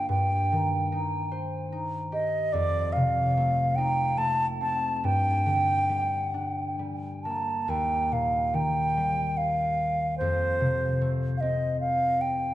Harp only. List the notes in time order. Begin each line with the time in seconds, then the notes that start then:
Already playing: D3 A#3 D4 F4
0.09 G2
0.52 D#3
0.92 D#4
1.32 C5
1.72 D#4
2.12 G4
2.53 F2
2.96 C3
3.37 A3
3.78 D#4
4.17 A3
4.61 C4
5.04 G2
5.46 D3
5.89 G3
6.34 D4
6.79 G3
7.25 A#3
7.68 D#2
8.12 A#2
8.54 D#3
8.97 G3
10.21 F2
10.60 C3
11.01 A3
11.42 C4